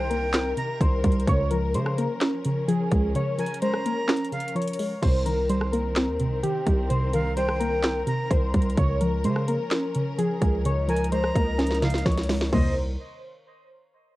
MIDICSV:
0, 0, Header, 1, 7, 480
1, 0, Start_track
1, 0, Tempo, 468750
1, 1307, Time_signature, 4, 2, 24, 8
1, 14500, End_track
2, 0, Start_track
2, 0, Title_t, "Flute"
2, 0, Program_c, 0, 73
2, 0, Note_on_c, 0, 79, 91
2, 545, Note_off_c, 0, 79, 0
2, 584, Note_on_c, 0, 82, 83
2, 813, Note_off_c, 0, 82, 0
2, 3466, Note_on_c, 0, 80, 85
2, 3694, Note_off_c, 0, 80, 0
2, 3706, Note_on_c, 0, 82, 92
2, 4385, Note_off_c, 0, 82, 0
2, 4427, Note_on_c, 0, 77, 87
2, 4655, Note_off_c, 0, 77, 0
2, 7305, Note_on_c, 0, 77, 90
2, 7534, Note_off_c, 0, 77, 0
2, 7546, Note_on_c, 0, 79, 88
2, 8225, Note_off_c, 0, 79, 0
2, 8265, Note_on_c, 0, 82, 79
2, 8493, Note_off_c, 0, 82, 0
2, 11146, Note_on_c, 0, 80, 83
2, 11374, Note_off_c, 0, 80, 0
2, 11386, Note_on_c, 0, 82, 90
2, 12065, Note_off_c, 0, 82, 0
2, 12107, Note_on_c, 0, 77, 86
2, 12335, Note_off_c, 0, 77, 0
2, 12826, Note_on_c, 0, 75, 93
2, 13049, Note_off_c, 0, 75, 0
2, 14500, End_track
3, 0, Start_track
3, 0, Title_t, "Synth keys"
3, 0, Program_c, 1, 88
3, 100, Note_on_c, 1, 70, 83
3, 782, Note_off_c, 1, 70, 0
3, 828, Note_on_c, 1, 72, 81
3, 1278, Note_off_c, 1, 72, 0
3, 1319, Note_on_c, 1, 73, 104
3, 1540, Note_off_c, 1, 73, 0
3, 1543, Note_on_c, 1, 70, 85
3, 1771, Note_off_c, 1, 70, 0
3, 1791, Note_on_c, 1, 72, 85
3, 2016, Note_off_c, 1, 72, 0
3, 2024, Note_on_c, 1, 70, 80
3, 2704, Note_off_c, 1, 70, 0
3, 2746, Note_on_c, 1, 68, 91
3, 3197, Note_off_c, 1, 68, 0
3, 3231, Note_on_c, 1, 73, 98
3, 3456, Note_off_c, 1, 73, 0
3, 3469, Note_on_c, 1, 70, 84
3, 3694, Note_off_c, 1, 70, 0
3, 3707, Note_on_c, 1, 72, 95
3, 3934, Note_off_c, 1, 72, 0
3, 3952, Note_on_c, 1, 70, 82
3, 4628, Note_off_c, 1, 70, 0
3, 4665, Note_on_c, 1, 73, 80
3, 5117, Note_off_c, 1, 73, 0
3, 5141, Note_on_c, 1, 72, 99
3, 5370, Note_off_c, 1, 72, 0
3, 5382, Note_on_c, 1, 70, 86
3, 5611, Note_off_c, 1, 70, 0
3, 5627, Note_on_c, 1, 72, 89
3, 5854, Note_off_c, 1, 72, 0
3, 5858, Note_on_c, 1, 70, 76
3, 6541, Note_off_c, 1, 70, 0
3, 6584, Note_on_c, 1, 67, 96
3, 7036, Note_off_c, 1, 67, 0
3, 7061, Note_on_c, 1, 72, 92
3, 7290, Note_off_c, 1, 72, 0
3, 7305, Note_on_c, 1, 70, 79
3, 7533, Note_off_c, 1, 70, 0
3, 7544, Note_on_c, 1, 72, 89
3, 7772, Note_off_c, 1, 72, 0
3, 7779, Note_on_c, 1, 70, 82
3, 8462, Note_off_c, 1, 70, 0
3, 8506, Note_on_c, 1, 72, 77
3, 8957, Note_off_c, 1, 72, 0
3, 8997, Note_on_c, 1, 73, 99
3, 9219, Note_off_c, 1, 73, 0
3, 9221, Note_on_c, 1, 70, 85
3, 9450, Note_off_c, 1, 70, 0
3, 9470, Note_on_c, 1, 72, 80
3, 9695, Note_off_c, 1, 72, 0
3, 9705, Note_on_c, 1, 70, 79
3, 10384, Note_off_c, 1, 70, 0
3, 10426, Note_on_c, 1, 68, 90
3, 10877, Note_off_c, 1, 68, 0
3, 10912, Note_on_c, 1, 73, 93
3, 11136, Note_off_c, 1, 73, 0
3, 11149, Note_on_c, 1, 70, 85
3, 11375, Note_off_c, 1, 70, 0
3, 11386, Note_on_c, 1, 72, 92
3, 11613, Note_off_c, 1, 72, 0
3, 11632, Note_on_c, 1, 70, 80
3, 12308, Note_off_c, 1, 70, 0
3, 12345, Note_on_c, 1, 73, 82
3, 12797, Note_off_c, 1, 73, 0
3, 12827, Note_on_c, 1, 72, 87
3, 13050, Note_off_c, 1, 72, 0
3, 14500, End_track
4, 0, Start_track
4, 0, Title_t, "String section"
4, 0, Program_c, 2, 48
4, 0, Note_on_c, 2, 48, 79
4, 0, Note_on_c, 2, 51, 83
4, 0, Note_on_c, 2, 70, 92
4, 1266, Note_off_c, 2, 48, 0
4, 1268, Note_off_c, 2, 51, 0
4, 1307, Note_on_c, 2, 61, 74
4, 1308, Note_on_c, 2, 53, 84
4, 5104, Note_off_c, 2, 70, 0
4, 5108, Note_off_c, 2, 61, 0
4, 5109, Note_off_c, 2, 53, 0
4, 5147, Note_on_c, 2, 51, 80
4, 5147, Note_on_c, 2, 60, 75
4, 5147, Note_on_c, 2, 70, 89
4, 8948, Note_off_c, 2, 51, 0
4, 8948, Note_off_c, 2, 60, 0
4, 8987, Note_on_c, 2, 53, 83
4, 8987, Note_on_c, 2, 61, 76
4, 10887, Note_off_c, 2, 61, 0
4, 10907, Note_on_c, 2, 63, 75
4, 12785, Note_off_c, 2, 70, 0
4, 12788, Note_off_c, 2, 53, 0
4, 12807, Note_off_c, 2, 63, 0
4, 12829, Note_on_c, 2, 51, 74
4, 12829, Note_on_c, 2, 70, 78
4, 12830, Note_on_c, 2, 60, 64
4, 13051, Note_off_c, 2, 51, 0
4, 13051, Note_off_c, 2, 60, 0
4, 13051, Note_off_c, 2, 70, 0
4, 14500, End_track
5, 0, Start_track
5, 0, Title_t, "Synth pluck"
5, 0, Program_c, 3, 84
5, 0, Note_on_c, 3, 48, 100
5, 0, Note_on_c, 3, 51, 83
5, 0, Note_on_c, 3, 55, 87
5, 110, Note_on_c, 3, 58, 86
5, 345, Note_on_c, 3, 60, 105
5, 568, Note_off_c, 3, 48, 0
5, 580, Note_on_c, 3, 48, 84
5, 811, Note_off_c, 3, 51, 0
5, 823, Note_on_c, 3, 51, 91
5, 1060, Note_off_c, 3, 55, 0
5, 1073, Note_on_c, 3, 55, 86
5, 1303, Note_off_c, 3, 48, 0
5, 1305, Note_off_c, 3, 51, 0
5, 1305, Note_off_c, 3, 60, 0
5, 1308, Note_off_c, 3, 58, 0
5, 1309, Note_off_c, 3, 55, 0
5, 1310, Note_on_c, 3, 49, 110
5, 1550, Note_on_c, 3, 53, 86
5, 1788, Note_on_c, 3, 56, 88
5, 2032, Note_on_c, 3, 58, 84
5, 2271, Note_on_c, 3, 61, 101
5, 2501, Note_off_c, 3, 49, 0
5, 2513, Note_on_c, 3, 49, 85
5, 2734, Note_off_c, 3, 53, 0
5, 2747, Note_on_c, 3, 53, 92
5, 2971, Note_off_c, 3, 56, 0
5, 2983, Note_on_c, 3, 56, 83
5, 3216, Note_off_c, 3, 49, 0
5, 3229, Note_off_c, 3, 58, 0
5, 3229, Note_on_c, 3, 49, 101
5, 3449, Note_off_c, 3, 53, 0
5, 3461, Note_on_c, 3, 53, 80
5, 3468, Note_off_c, 3, 61, 0
5, 3697, Note_off_c, 3, 56, 0
5, 3709, Note_on_c, 3, 56, 93
5, 3952, Note_on_c, 3, 58, 92
5, 4180, Note_on_c, 3, 61, 106
5, 4411, Note_off_c, 3, 49, 0
5, 4423, Note_on_c, 3, 49, 82
5, 4648, Note_off_c, 3, 53, 0
5, 4660, Note_on_c, 3, 53, 92
5, 4894, Note_off_c, 3, 56, 0
5, 4907, Note_on_c, 3, 56, 85
5, 5143, Note_off_c, 3, 53, 0
5, 5143, Note_off_c, 3, 61, 0
5, 5145, Note_off_c, 3, 49, 0
5, 5146, Note_off_c, 3, 56, 0
5, 5148, Note_on_c, 3, 48, 94
5, 5149, Note_off_c, 3, 58, 0
5, 5387, Note_on_c, 3, 51, 87
5, 5626, Note_on_c, 3, 55, 86
5, 5870, Note_on_c, 3, 58, 85
5, 6115, Note_on_c, 3, 60, 102
5, 6337, Note_off_c, 3, 48, 0
5, 6350, Note_on_c, 3, 48, 78
5, 6576, Note_off_c, 3, 51, 0
5, 6588, Note_on_c, 3, 51, 91
5, 6818, Note_off_c, 3, 55, 0
5, 6830, Note_on_c, 3, 55, 86
5, 7059, Note_off_c, 3, 48, 0
5, 7068, Note_off_c, 3, 58, 0
5, 7071, Note_on_c, 3, 48, 99
5, 7305, Note_off_c, 3, 51, 0
5, 7310, Note_off_c, 3, 60, 0
5, 7318, Note_on_c, 3, 51, 83
5, 7538, Note_off_c, 3, 55, 0
5, 7550, Note_on_c, 3, 55, 88
5, 7789, Note_on_c, 3, 58, 83
5, 8024, Note_on_c, 3, 60, 101
5, 8248, Note_off_c, 3, 48, 0
5, 8260, Note_on_c, 3, 48, 85
5, 8491, Note_off_c, 3, 51, 0
5, 8503, Note_on_c, 3, 51, 90
5, 8740, Note_off_c, 3, 55, 0
5, 8752, Note_on_c, 3, 55, 82
5, 8983, Note_off_c, 3, 48, 0
5, 8985, Note_off_c, 3, 51, 0
5, 8985, Note_off_c, 3, 60, 0
5, 8988, Note_off_c, 3, 58, 0
5, 8989, Note_off_c, 3, 55, 0
5, 8990, Note_on_c, 3, 49, 108
5, 9229, Note_on_c, 3, 53, 85
5, 9468, Note_on_c, 3, 56, 87
5, 9713, Note_on_c, 3, 58, 80
5, 9950, Note_on_c, 3, 61, 100
5, 10180, Note_off_c, 3, 49, 0
5, 10192, Note_on_c, 3, 49, 82
5, 10414, Note_off_c, 3, 53, 0
5, 10426, Note_on_c, 3, 53, 90
5, 10649, Note_off_c, 3, 56, 0
5, 10661, Note_on_c, 3, 56, 79
5, 10894, Note_off_c, 3, 49, 0
5, 10907, Note_on_c, 3, 49, 96
5, 10910, Note_off_c, 3, 58, 0
5, 11127, Note_off_c, 3, 53, 0
5, 11140, Note_on_c, 3, 53, 81
5, 11148, Note_off_c, 3, 61, 0
5, 11374, Note_off_c, 3, 56, 0
5, 11386, Note_on_c, 3, 56, 94
5, 11631, Note_on_c, 3, 58, 89
5, 11860, Note_on_c, 3, 61, 104
5, 12091, Note_off_c, 3, 49, 0
5, 12104, Note_on_c, 3, 49, 81
5, 12329, Note_off_c, 3, 53, 0
5, 12342, Note_on_c, 3, 53, 89
5, 12575, Note_off_c, 3, 56, 0
5, 12587, Note_on_c, 3, 56, 86
5, 12816, Note_off_c, 3, 58, 0
5, 12823, Note_off_c, 3, 61, 0
5, 12824, Note_off_c, 3, 53, 0
5, 12825, Note_off_c, 3, 49, 0
5, 12827, Note_off_c, 3, 56, 0
5, 12828, Note_on_c, 3, 51, 85
5, 12829, Note_on_c, 3, 48, 89
5, 12829, Note_on_c, 3, 55, 82
5, 12829, Note_on_c, 3, 58, 103
5, 13051, Note_off_c, 3, 48, 0
5, 13051, Note_off_c, 3, 51, 0
5, 13051, Note_off_c, 3, 55, 0
5, 13051, Note_off_c, 3, 58, 0
5, 14500, End_track
6, 0, Start_track
6, 0, Title_t, "808-style bass"
6, 0, Program_c, 4, 38
6, 0, Note_on_c, 4, 36, 108
6, 545, Note_off_c, 4, 36, 0
6, 827, Note_on_c, 4, 36, 110
6, 1057, Note_off_c, 4, 36, 0
6, 1067, Note_on_c, 4, 36, 104
6, 1297, Note_off_c, 4, 36, 0
6, 1307, Note_on_c, 4, 37, 113
6, 1786, Note_on_c, 4, 49, 101
6, 1802, Note_off_c, 4, 37, 0
6, 2128, Note_off_c, 4, 49, 0
6, 2986, Note_on_c, 4, 37, 102
6, 3217, Note_off_c, 4, 37, 0
6, 5146, Note_on_c, 4, 36, 112
6, 6225, Note_on_c, 4, 39, 93
6, 6241, Note_off_c, 4, 36, 0
6, 6405, Note_on_c, 4, 36, 101
6, 6420, Note_off_c, 4, 39, 0
6, 6577, Note_off_c, 4, 36, 0
6, 6826, Note_on_c, 4, 36, 105
6, 8225, Note_off_c, 4, 36, 0
6, 8506, Note_on_c, 4, 36, 110
6, 8737, Note_off_c, 4, 36, 0
6, 8747, Note_on_c, 4, 36, 104
6, 8977, Note_off_c, 4, 36, 0
6, 8987, Note_on_c, 4, 37, 113
6, 9467, Note_on_c, 4, 49, 97
6, 9482, Note_off_c, 4, 37, 0
6, 9809, Note_off_c, 4, 49, 0
6, 10666, Note_on_c, 4, 37, 102
6, 11588, Note_off_c, 4, 37, 0
6, 11627, Note_on_c, 4, 37, 105
6, 12318, Note_off_c, 4, 37, 0
6, 12347, Note_on_c, 4, 37, 110
6, 12807, Note_off_c, 4, 37, 0
6, 12827, Note_on_c, 4, 36, 117
6, 13273, Note_off_c, 4, 36, 0
6, 14500, End_track
7, 0, Start_track
7, 0, Title_t, "Drums"
7, 110, Note_on_c, 9, 42, 72
7, 213, Note_off_c, 9, 42, 0
7, 342, Note_on_c, 9, 39, 99
7, 344, Note_on_c, 9, 42, 73
7, 347, Note_on_c, 9, 38, 123
7, 445, Note_off_c, 9, 39, 0
7, 447, Note_off_c, 9, 42, 0
7, 450, Note_off_c, 9, 38, 0
7, 586, Note_on_c, 9, 42, 79
7, 688, Note_off_c, 9, 42, 0
7, 827, Note_on_c, 9, 36, 98
7, 831, Note_on_c, 9, 42, 83
7, 929, Note_off_c, 9, 36, 0
7, 933, Note_off_c, 9, 42, 0
7, 1065, Note_on_c, 9, 46, 82
7, 1066, Note_on_c, 9, 42, 65
7, 1067, Note_on_c, 9, 36, 95
7, 1146, Note_off_c, 9, 42, 0
7, 1146, Note_on_c, 9, 42, 67
7, 1168, Note_off_c, 9, 46, 0
7, 1169, Note_off_c, 9, 36, 0
7, 1227, Note_off_c, 9, 42, 0
7, 1227, Note_on_c, 9, 42, 68
7, 1307, Note_off_c, 9, 42, 0
7, 1307, Note_on_c, 9, 36, 114
7, 1307, Note_on_c, 9, 42, 77
7, 1409, Note_off_c, 9, 36, 0
7, 1410, Note_off_c, 9, 42, 0
7, 1545, Note_on_c, 9, 42, 78
7, 1648, Note_off_c, 9, 42, 0
7, 1787, Note_on_c, 9, 42, 97
7, 1889, Note_off_c, 9, 42, 0
7, 1907, Note_on_c, 9, 37, 92
7, 2009, Note_off_c, 9, 37, 0
7, 2030, Note_on_c, 9, 42, 67
7, 2132, Note_off_c, 9, 42, 0
7, 2262, Note_on_c, 9, 39, 95
7, 2264, Note_on_c, 9, 42, 72
7, 2267, Note_on_c, 9, 38, 123
7, 2364, Note_off_c, 9, 39, 0
7, 2366, Note_off_c, 9, 42, 0
7, 2369, Note_off_c, 9, 38, 0
7, 2505, Note_on_c, 9, 42, 74
7, 2607, Note_off_c, 9, 42, 0
7, 2751, Note_on_c, 9, 42, 84
7, 2853, Note_off_c, 9, 42, 0
7, 2986, Note_on_c, 9, 42, 82
7, 2987, Note_on_c, 9, 36, 97
7, 3088, Note_off_c, 9, 42, 0
7, 3089, Note_off_c, 9, 36, 0
7, 3227, Note_on_c, 9, 42, 73
7, 3329, Note_off_c, 9, 42, 0
7, 3467, Note_on_c, 9, 42, 63
7, 3546, Note_off_c, 9, 42, 0
7, 3546, Note_on_c, 9, 42, 63
7, 3626, Note_off_c, 9, 42, 0
7, 3626, Note_on_c, 9, 42, 64
7, 3706, Note_off_c, 9, 42, 0
7, 3706, Note_on_c, 9, 42, 87
7, 3808, Note_off_c, 9, 42, 0
7, 3826, Note_on_c, 9, 37, 94
7, 3928, Note_off_c, 9, 37, 0
7, 3950, Note_on_c, 9, 42, 73
7, 4052, Note_off_c, 9, 42, 0
7, 4181, Note_on_c, 9, 39, 98
7, 4186, Note_on_c, 9, 38, 121
7, 4186, Note_on_c, 9, 42, 45
7, 4266, Note_off_c, 9, 42, 0
7, 4266, Note_on_c, 9, 42, 53
7, 4284, Note_off_c, 9, 39, 0
7, 4288, Note_off_c, 9, 38, 0
7, 4346, Note_off_c, 9, 42, 0
7, 4346, Note_on_c, 9, 42, 56
7, 4427, Note_off_c, 9, 42, 0
7, 4427, Note_on_c, 9, 42, 61
7, 4506, Note_off_c, 9, 42, 0
7, 4506, Note_on_c, 9, 42, 68
7, 4586, Note_off_c, 9, 42, 0
7, 4586, Note_on_c, 9, 42, 73
7, 4666, Note_off_c, 9, 42, 0
7, 4666, Note_on_c, 9, 42, 52
7, 4726, Note_off_c, 9, 42, 0
7, 4726, Note_on_c, 9, 42, 65
7, 4786, Note_off_c, 9, 42, 0
7, 4786, Note_on_c, 9, 42, 79
7, 4846, Note_off_c, 9, 42, 0
7, 4846, Note_on_c, 9, 42, 90
7, 4905, Note_on_c, 9, 46, 82
7, 4949, Note_off_c, 9, 42, 0
7, 5008, Note_off_c, 9, 46, 0
7, 5146, Note_on_c, 9, 36, 109
7, 5146, Note_on_c, 9, 42, 72
7, 5146, Note_on_c, 9, 49, 95
7, 5248, Note_off_c, 9, 49, 0
7, 5249, Note_off_c, 9, 36, 0
7, 5249, Note_off_c, 9, 42, 0
7, 5386, Note_on_c, 9, 42, 74
7, 5488, Note_off_c, 9, 42, 0
7, 5627, Note_on_c, 9, 42, 94
7, 5729, Note_off_c, 9, 42, 0
7, 5746, Note_on_c, 9, 37, 92
7, 5849, Note_off_c, 9, 37, 0
7, 5869, Note_on_c, 9, 42, 66
7, 5972, Note_off_c, 9, 42, 0
7, 6100, Note_on_c, 9, 39, 98
7, 6102, Note_on_c, 9, 42, 73
7, 6105, Note_on_c, 9, 38, 118
7, 6202, Note_off_c, 9, 39, 0
7, 6205, Note_off_c, 9, 42, 0
7, 6207, Note_off_c, 9, 38, 0
7, 6344, Note_on_c, 9, 42, 72
7, 6447, Note_off_c, 9, 42, 0
7, 6589, Note_on_c, 9, 42, 82
7, 6692, Note_off_c, 9, 42, 0
7, 6825, Note_on_c, 9, 42, 83
7, 6826, Note_on_c, 9, 36, 90
7, 6927, Note_off_c, 9, 42, 0
7, 6928, Note_off_c, 9, 36, 0
7, 7066, Note_on_c, 9, 42, 73
7, 7169, Note_off_c, 9, 42, 0
7, 7305, Note_on_c, 9, 42, 75
7, 7408, Note_off_c, 9, 42, 0
7, 7546, Note_on_c, 9, 42, 85
7, 7649, Note_off_c, 9, 42, 0
7, 7667, Note_on_c, 9, 37, 89
7, 7769, Note_off_c, 9, 37, 0
7, 7790, Note_on_c, 9, 42, 71
7, 7892, Note_off_c, 9, 42, 0
7, 8021, Note_on_c, 9, 39, 95
7, 8023, Note_on_c, 9, 42, 70
7, 8026, Note_on_c, 9, 38, 118
7, 8124, Note_off_c, 9, 39, 0
7, 8126, Note_off_c, 9, 42, 0
7, 8129, Note_off_c, 9, 38, 0
7, 8265, Note_on_c, 9, 42, 77
7, 8368, Note_off_c, 9, 42, 0
7, 8506, Note_on_c, 9, 36, 101
7, 8510, Note_on_c, 9, 42, 81
7, 8609, Note_off_c, 9, 36, 0
7, 8612, Note_off_c, 9, 42, 0
7, 8745, Note_on_c, 9, 46, 83
7, 8746, Note_on_c, 9, 36, 92
7, 8746, Note_on_c, 9, 42, 65
7, 8826, Note_off_c, 9, 42, 0
7, 8826, Note_on_c, 9, 42, 64
7, 8847, Note_off_c, 9, 46, 0
7, 8849, Note_off_c, 9, 36, 0
7, 8906, Note_off_c, 9, 42, 0
7, 8906, Note_on_c, 9, 42, 63
7, 8986, Note_off_c, 9, 42, 0
7, 8986, Note_on_c, 9, 36, 112
7, 8986, Note_on_c, 9, 42, 73
7, 9088, Note_off_c, 9, 42, 0
7, 9089, Note_off_c, 9, 36, 0
7, 9225, Note_on_c, 9, 42, 77
7, 9328, Note_off_c, 9, 42, 0
7, 9466, Note_on_c, 9, 42, 96
7, 9568, Note_off_c, 9, 42, 0
7, 9586, Note_on_c, 9, 37, 90
7, 9688, Note_off_c, 9, 37, 0
7, 9709, Note_on_c, 9, 42, 64
7, 9811, Note_off_c, 9, 42, 0
7, 9940, Note_on_c, 9, 39, 97
7, 9942, Note_on_c, 9, 42, 74
7, 9945, Note_on_c, 9, 38, 118
7, 10043, Note_off_c, 9, 39, 0
7, 10045, Note_off_c, 9, 42, 0
7, 10048, Note_off_c, 9, 38, 0
7, 10184, Note_on_c, 9, 42, 74
7, 10286, Note_off_c, 9, 42, 0
7, 10430, Note_on_c, 9, 42, 83
7, 10532, Note_off_c, 9, 42, 0
7, 10666, Note_on_c, 9, 36, 94
7, 10666, Note_on_c, 9, 42, 81
7, 10768, Note_off_c, 9, 42, 0
7, 10769, Note_off_c, 9, 36, 0
7, 10907, Note_on_c, 9, 42, 73
7, 11009, Note_off_c, 9, 42, 0
7, 11147, Note_on_c, 9, 42, 61
7, 11226, Note_off_c, 9, 42, 0
7, 11226, Note_on_c, 9, 42, 62
7, 11306, Note_off_c, 9, 42, 0
7, 11306, Note_on_c, 9, 42, 65
7, 11386, Note_off_c, 9, 42, 0
7, 11386, Note_on_c, 9, 42, 88
7, 11489, Note_off_c, 9, 42, 0
7, 11507, Note_on_c, 9, 37, 92
7, 11609, Note_off_c, 9, 37, 0
7, 11627, Note_on_c, 9, 36, 91
7, 11630, Note_on_c, 9, 42, 72
7, 11729, Note_off_c, 9, 36, 0
7, 11732, Note_off_c, 9, 42, 0
7, 11867, Note_on_c, 9, 38, 60
7, 11867, Note_on_c, 9, 42, 44
7, 11947, Note_off_c, 9, 42, 0
7, 11947, Note_on_c, 9, 42, 50
7, 11969, Note_off_c, 9, 38, 0
7, 11987, Note_on_c, 9, 38, 59
7, 12027, Note_off_c, 9, 42, 0
7, 12027, Note_on_c, 9, 42, 54
7, 12090, Note_off_c, 9, 38, 0
7, 12107, Note_off_c, 9, 42, 0
7, 12107, Note_on_c, 9, 38, 73
7, 12107, Note_on_c, 9, 42, 59
7, 12186, Note_off_c, 9, 42, 0
7, 12186, Note_on_c, 9, 42, 67
7, 12209, Note_off_c, 9, 38, 0
7, 12226, Note_on_c, 9, 38, 71
7, 12267, Note_off_c, 9, 42, 0
7, 12267, Note_on_c, 9, 42, 73
7, 12329, Note_off_c, 9, 38, 0
7, 12347, Note_off_c, 9, 42, 0
7, 12347, Note_on_c, 9, 36, 99
7, 12347, Note_on_c, 9, 38, 89
7, 12347, Note_on_c, 9, 42, 50
7, 12407, Note_off_c, 9, 42, 0
7, 12407, Note_on_c, 9, 42, 62
7, 12449, Note_off_c, 9, 36, 0
7, 12450, Note_off_c, 9, 38, 0
7, 12467, Note_off_c, 9, 42, 0
7, 12467, Note_on_c, 9, 38, 84
7, 12467, Note_on_c, 9, 42, 76
7, 12527, Note_off_c, 9, 42, 0
7, 12527, Note_on_c, 9, 42, 87
7, 12569, Note_off_c, 9, 38, 0
7, 12587, Note_on_c, 9, 38, 107
7, 12587, Note_on_c, 9, 46, 83
7, 12629, Note_off_c, 9, 42, 0
7, 12689, Note_off_c, 9, 46, 0
7, 12690, Note_off_c, 9, 38, 0
7, 12708, Note_on_c, 9, 38, 96
7, 12810, Note_off_c, 9, 38, 0
7, 12827, Note_on_c, 9, 36, 110
7, 12827, Note_on_c, 9, 43, 109
7, 12827, Note_on_c, 9, 57, 91
7, 12930, Note_off_c, 9, 36, 0
7, 12930, Note_off_c, 9, 43, 0
7, 12930, Note_off_c, 9, 57, 0
7, 14500, End_track
0, 0, End_of_file